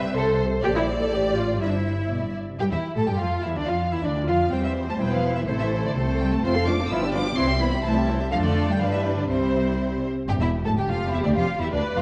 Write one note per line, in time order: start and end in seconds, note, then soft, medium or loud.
0.00 0.64 C2 medium
0.00 0.64 C3 medium
0.00 0.15 E5 loud
0.00 0.16 G5 medium
0.16 0.40 A4 loud
0.16 0.64 C5 medium
0.16 0.64 C6 medium
0.64 1.09 A#1 medium
0.64 1.09 A#2 medium
0.64 0.69 G4 loud
0.64 1.09 C5 medium
0.64 1.62 D5 loud
0.76 0.84 E4 medium
1.01 1.12 A4 medium
1.11 1.61 A1 medium
1.11 1.62 A2 medium
1.11 1.36 G4 medium
1.11 1.60 C5 medium
1.36 1.61 F4 medium
1.61 2.40 G1 medium
1.61 2.06 G2 medium
1.61 1.68 E4 medium
1.61 2.10 C5 medium
1.61 2.35 E5 medium
1.68 1.76 D4 medium
1.76 2.36 E4 medium
2.11 2.22 B2 medium
2.11 2.40 D5 medium
2.23 2.48 G2 medium
2.49 2.61 C3 soft
2.60 2.65 G2 medium
2.60 2.71 G3 medium
2.60 2.65 G4 medium
2.60 2.65 G5 loud
2.72 2.80 E2 medium
2.72 2.80 E3 medium
2.72 2.96 E4 medium
2.72 2.80 E5 medium
2.96 3.01 A2 medium
2.96 3.08 A3 medium
2.96 3.08 A4 medium
2.96 3.08 A5 medium
3.08 3.13 G2 medium
3.08 3.20 G3 medium
3.08 3.20 G4 medium
3.08 3.20 G5 medium
3.19 3.43 F2 medium
3.19 3.28 F3 medium
3.19 3.44 F4 medium
3.19 3.43 F4 medium
3.19 3.44 F5 medium
3.43 3.56 E2 medium
3.43 3.56 E3 medium
3.43 3.56 E4 medium
3.43 3.56 E5 medium
3.55 3.68 D2 medium
3.55 3.68 D3 medium
3.55 3.68 D4 medium
3.55 3.61 D4 medium
3.55 3.68 D5 loud
3.67 3.91 F2 medium
3.67 3.91 F3 medium
3.67 3.92 F4 medium
3.67 3.76 F4 medium
3.67 3.91 F5 medium
3.92 4.04 E2 medium
3.92 4.04 E3 medium
3.92 4.04 E4 medium
3.92 4.04 E5 medium
4.04 4.27 D2 medium
4.04 4.28 D3 medium
4.04 4.28 D4 medium
4.04 4.12 D4 medium
4.04 4.28 D5 medium
4.27 4.52 F2 medium
4.27 4.52 F3 medium
4.27 4.51 F4 medium
4.27 4.36 F4 medium
4.27 4.51 F5 medium
4.51 4.96 E2 medium
4.51 4.96 G3 medium
4.51 4.64 G3 medium
4.51 4.96 C4 medium
4.51 5.44 C5 medium
4.51 4.64 G5 loud
4.64 4.88 E3 medium
4.64 4.72 E5 medium
4.88 5.00 A3 medium
4.88 4.94 A5 medium
4.99 5.47 E1 medium
4.99 5.05 G3 medium
4.99 5.48 B3 medium
4.99 5.47 E4 medium
4.99 5.48 B4 medium
4.99 5.12 G5 medium
5.12 5.36 F3 medium
5.12 5.36 F5 medium
5.37 5.48 E3 medium
5.37 5.41 E5 medium
5.48 5.95 A1 medium
5.48 5.60 C3 medium
5.48 5.94 A3 medium
5.48 5.95 E4 medium
5.48 5.94 A4 medium
5.48 5.53 C5 loud
5.48 5.95 C5 medium
5.60 5.84 E3 medium
5.60 5.68 E5 medium
5.84 5.96 D3 medium
5.84 5.96 D5 medium
5.95 6.42 C2 medium
5.95 6.05 C3 medium
5.95 6.42 A3 medium
5.95 6.43 C4 medium
5.95 6.42 A4 medium
5.95 6.20 C5 medium
6.20 6.32 G3 medium
6.20 6.32 G5 loud
6.32 6.44 A3 medium
6.32 6.44 A5 medium
6.43 6.85 F1 medium
6.43 6.54 A3 medium
6.43 6.52 C4 loud
6.43 6.55 F4 medium
6.43 6.55 C5 medium
6.43 6.67 C6 loud
6.54 6.67 C4 medium
6.54 6.67 A4 medium
6.54 6.67 F5 medium
6.67 6.79 A3 medium
6.67 6.75 D4 loud
6.67 6.79 F4 medium
6.67 6.79 C5 medium
6.67 6.90 D6 loud
6.79 6.90 C4 medium
6.79 6.90 A4 medium
6.79 6.91 A4 medium
6.79 6.91 F5 medium
6.90 7.32 G1 medium
6.90 7.01 F3 medium
6.90 6.99 E4 loud
6.90 7.01 F4 medium
6.90 7.01 B4 medium
6.90 7.13 E6 loud
7.02 7.14 G3 medium
7.02 7.14 D4 medium
7.02 7.14 G4 medium
7.02 7.14 D5 medium
7.13 7.26 F3 medium
7.13 7.22 D4 medium
7.13 7.26 F4 medium
7.13 7.26 B4 medium
7.13 7.37 D6 loud
7.26 7.37 G3 medium
7.26 7.37 D4 medium
7.26 7.37 G4 medium
7.26 7.37 D5 medium
7.37 7.79 C2 medium
7.37 7.48 E3 medium
7.37 7.60 C4 loud
7.37 7.48 E4 medium
7.37 7.49 E4 medium
7.37 7.49 C5 medium
7.37 7.61 C6 loud
7.49 7.61 G3 medium
7.49 7.61 C4 medium
7.49 7.61 G4 medium
7.49 7.61 E5 medium
7.61 7.73 E3 medium
7.61 7.69 B3 loud
7.61 7.73 E4 medium
7.61 7.73 C5 medium
7.61 7.84 B5 loud
7.72 7.84 G3 medium
7.72 7.84 C4 medium
7.72 7.85 G4 medium
7.72 7.85 E5 medium
7.84 8.26 C2 medium
7.84 7.95 E3 medium
7.84 8.08 A3 medium
7.84 7.95 E4 medium
7.84 7.95 C5 medium
7.84 8.08 A5 loud
7.96 8.08 G3 medium
7.96 8.08 C4 medium
7.96 8.08 G4 medium
7.96 8.08 E5 medium
8.08 8.20 E3 medium
8.08 8.20 E4 medium
8.08 8.20 C5 medium
8.20 8.32 G3 medium
8.20 8.32 C4 medium
8.20 8.32 G4 medium
8.20 8.32 E5 medium
8.31 8.76 F2 medium
8.31 8.37 F3 loud
8.31 8.77 A3 medium
8.31 8.77 D4 medium
8.31 8.77 F4 medium
8.31 8.77 A4 medium
8.31 8.37 F5 loud
8.44 8.67 D3 medium
8.44 8.67 D5 medium
8.68 8.73 G3 medium
8.68 8.81 G5 loud
8.79 9.28 G2 medium
8.79 8.85 F3 medium
8.79 9.28 G3 medium
8.79 9.28 D4 medium
8.79 9.29 D4 medium
8.79 9.30 B4 medium
8.79 8.92 F5 medium
8.92 9.16 E3 medium
8.92 9.00 E5 medium
9.17 9.29 D3 medium
9.17 9.22 D5 medium
9.29 10.08 C2 medium
9.29 10.03 C3 medium
9.29 10.07 G3 medium
9.29 10.07 C4 medium
9.29 10.08 E4 medium
9.29 10.02 C5 medium
9.29 10.07 C5 medium
10.28 10.40 G1 medium
10.28 10.40 G2 loud
10.28 10.33 G4 loud
10.28 10.34 G5 loud
10.40 10.64 E1 medium
10.40 10.64 E2 medium
10.40 10.50 E4 medium
10.40 10.49 E5 medium
10.65 10.77 A2 medium
10.65 10.70 A4 medium
10.65 10.71 A5 medium
10.76 10.89 G1 medium
10.76 10.89 G2 medium
10.76 11.69 G4 medium
10.76 10.89 G4 medium
10.76 10.82 G5 medium
10.88 11.13 F1 medium
10.88 11.13 F2 medium
10.88 11.13 F4 medium
10.88 11.12 F5 medium
11.12 11.25 E2 medium
11.12 11.25 E4 medium
11.12 11.17 E5 medium
11.23 11.37 D2 medium
11.23 11.37 D2 loud
11.23 11.37 D4 loud
11.23 11.28 D5 medium
11.36 11.44 F1 medium
11.36 11.44 F2 medium
11.36 11.60 F4 medium
11.36 11.60 F5 medium
11.60 11.65 E2 medium
11.60 11.73 E4 medium
11.60 11.66 E5 medium
11.72 11.80 D2 medium
11.72 11.81 D2 medium
11.72 11.80 D4 medium
11.72 12.02 B4 medium
11.72 11.96 D5 loud
11.96 12.02 F1 medium
11.96 12.02 F2 medium
11.96 12.02 F4 medium
11.96 12.02 F5 loud